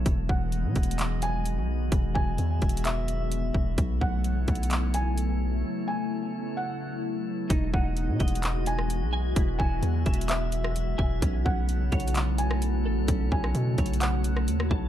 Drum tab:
HH |x-----------x-----x-x-x-x-----x-----x-----------|x-----------x-----x-x-x-x-----x-----x-----------|x-----------x-----x-x-x-x-----x-----x-----------|------------------------------------------------|
CP |------------------------x-----------------------|------------------------x-----------------------|------------------------x-----------------------|------------------------------------------------|
SD |------------------------------------------------|------------------------------------------------|------------------------------------------------|------------------------------------------------|
BD |o-----o-----------o-----------------------------|o-----o-----------o-----------------------o-----|o-----o-----------o-----------------------------|------------------------------------------------|

HH |x-----------x-----x-x-x-x-----x-----x-----------|x-----------x-----x-x-x-x-----x-----x-----------|x-----------x-----x-x-x-x-----x-----x-----------|x-----------x-----x-x-x-x-----x-----x-----------|
CP |------------------------x-----------------------|------------------------x-----------------------|------------------------x-----------------------|------------------------x-----------------------|
SD |---------------------------------r--------------|---------------------------------r--------------|---------------------------------r--------------|---------r-----------------------r-----r--------|
BD |o-----o-----------o-----------------------------|o-----o-----------o-----------------------o-----|o-----o-----------o-----------------------------|o-----o-----------o-----------------------o-----|